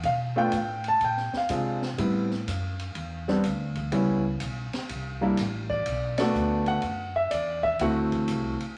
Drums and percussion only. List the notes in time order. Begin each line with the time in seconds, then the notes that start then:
0.03 kick, ride
0.52 kick, hi-hat pedal, ride
0.84 ride
1.01 kick, ride
1.17 snare
1.33 snare
1.49 kick, hi-hat pedal, ride
1.82 snare
1.98 kick, ride
2.31 snare
2.47 kick, hi-hat pedal, ride
2.79 ride
2.95 kick, ride
3.28 snare
3.44 kick, hi-hat pedal, ride
3.75 kick, ride
3.92 kick, ride
4.40 kick, hi-hat pedal, ride
4.73 snare, ride
4.89 kick, ride
5.37 kick, snare, hi-hat pedal, ride
5.70 kick
5.86 kick, ride
6.18 snare, ride
6.34 hi-hat pedal
6.66 ride
6.82 kick, ride
7.31 kick, hi-hat pedal, ride
7.64 kick
7.79 kick, ride
8.12 kick, ride
8.28 kick, hi-hat pedal, ride
8.60 ride